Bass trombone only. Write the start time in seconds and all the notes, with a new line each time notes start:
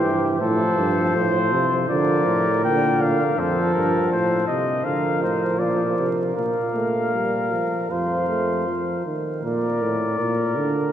0.04 G2
0.41 A2
0.78 G2
1.15 A2
1.52 C3
1.89 D3
2.27 A2
2.64 A#2
3.38 F2
3.75 G2
4.12 A2
4.49 C3
4.86 D3
5.23 A2
5.60 A#2
5.99 C3
6.36 A#2
7.90 F2
9.43 A#2
9.81 A2
10.20 A#2
10.57 D3